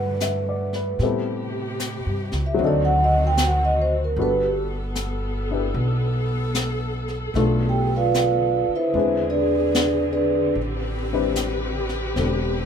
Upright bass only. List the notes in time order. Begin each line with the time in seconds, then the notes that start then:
Already playing: G2
0.99 A2
2.06 G2
2.32 C#2
2.59 D2
4.16 G1
5.74 B1
7.34 B1
8.68 muted upright bass stroke
8.94 E2
10.55 A1
12.16 E1